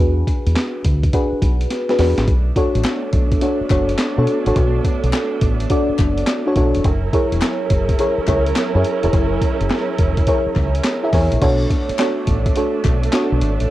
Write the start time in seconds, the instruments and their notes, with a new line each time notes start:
Already playing: fm electric piano D4 F#4 G#4 B4
0.00 fingered electric bass E2
0.27 kick, closed hi-hat
0.46 fingered electric bass E2, closed hi-hat
0.56 snare, clap, closed hi-hat
0.84 fingered electric bass D2, kick, closed hi-hat
1.03 kick, closed hi-hat
1.13 fm electric piano D4 F#4 G#4 B4, kick, closed hi-hat
1.32 muted fingered electric bass stroke
1.42 fingered electric bass B1, kick, closed hi-hat
1.61 closed hi-hat
1.70 snare, closed hi-hat
1.89 fm electric piano D4 F#4 G#4 B4, snare
1.99 fingered electric bass E2, fm electric piano D4 F#4 G#4 B4, snare, open hi-hat
2.18 fingered electric bass A1, snare, closed hi-hat
2.27 fingered electric bass B1, string section A3 B3 D4, kick, closed hi-hat
2.56 fm electric piano D4 F#4 A4 C#5, kick, closed hi-hat
2.75 fingered electric bass A1, closed hi-hat
2.84 snare, clap, closed hi-hat
3.13 fingered electric bass B1, kick, closed hi-hat
3.32 kick, closed hi-hat
3.41 fm electric piano D4 F#4 A4 C#5, closed hi-hat
3.61 muted fingered electric bass stroke
3.70 fingered electric bass F#1, fm electric piano D4 F#4 A4 C#5, kick, clap, closed hi-hat
3.89 closed hi-hat
3.99 snare, clap, closed hi-hat
4.17 fingered electric bass B2, fm electric piano D4 F#4 A4 C#5
4.27 closed hi-hat
4.46 fingered electric bass A1, fm electric piano D4 F#4 A4 C#5, closed hi-hat
4.56 fingered electric bass B1, kick, closed hi-hat
4.84 kick, closed hi-hat
5.03 fingered electric bass B1, closed hi-hat
5.13 snare, clap, closed hi-hat
5.41 fingered electric bass A1, kick, closed hi-hat
5.60 closed hi-hat
5.70 fm electric piano D4 F#4 A4 D5, kick, closed hi-hat
5.89 muted fingered electric bass stroke
5.99 fingered electric bass F#1, kick, clap, closed hi-hat
6.18 closed hi-hat
6.27 snare, clap, closed hi-hat
6.46 fm electric piano D4 F#4 A4 C#5
6.56 fingered electric bass B1, fm electric piano D4 F#4 A4 C#5, kick, closed hi-hat
6.75 fingered electric bass E1, closed hi-hat
6.84 fingered electric bass F#1, string section F#3 C#4 E4 A#4, kick, closed hi-hat
7.13 fm electric piano E4 G#4 A#4 C#5, kick, closed hi-hat
7.32 fingered electric bass E1, closed hi-hat
7.42 snare, clap, closed hi-hat
7.70 fingered electric bass F#1, kick, closed hi-hat
7.89 kick, closed hi-hat
7.99 fm electric piano E4 G#4 A#4 C#5, closed hi-hat
8.18 muted fingered electric bass stroke
8.27 fingered electric bass C#2, fm electric piano E4 G#4 A#4 C#5, kick, clap, closed hi-hat
8.46 closed hi-hat
8.56 snare, clap, closed hi-hat
8.75 fingered electric bass F#2, fm electric piano E4 G#4 A#4 C#5
8.84 closed hi-hat
9.03 fingered electric bass E1, fm electric piano E4 G#4 A#4 C#5, closed hi-hat
9.13 fingered electric bass F#1, kick, closed hi-hat
9.42 kick, closed hi-hat
9.61 fingered electric bass F#1, closed hi-hat
9.70 snare, clap, closed hi-hat
9.99 fingered electric bass E1, kick, closed hi-hat
10.17 kick, closed hi-hat
10.27 fm electric piano E4 G#4 A#4 C#5, kick, closed hi-hat
10.46 muted fingered electric bass stroke
10.56 fingered electric bass C#2, kick, clap, closed hi-hat
10.75 closed hi-hat
10.84 snare, clap, closed hi-hat
11.03 fm electric piano E4 G#4 A#4 E5
11.13 fingered electric bass E2, fm electric piano E4 G#4 A#4 C#5, kick, snare, open hi-hat
11.32 fingered electric bass A#1, closed hi-hat
11.42 fingered electric bass B1, string section A3 B3 D4, fm electric piano D4 F#4 A4 C#5, kick, closed hi-hat, crash
11.70 kick, closed hi-hat
11.89 muted fingered electric bass stroke, closed hi-hat
11.99 fm electric piano D4 F#4 A4 C#5, snare, clap, closed hi-hat
12.27 fingered electric bass A1, kick, closed hi-hat
12.46 kick, closed hi-hat
12.56 fm electric piano D4 F#4 A4 C#5, closed hi-hat
12.85 fingered electric bass B1, kick, clap, closed hi-hat
13.03 closed hi-hat
13.13 fm electric piano D4 F#4 A4 C#5, snare, clap, closed hi-hat
13.32 fingered electric bass B1
13.42 fingered electric bass G#1, closed hi-hat
13.60 fingered electric bass A1, closed hi-hat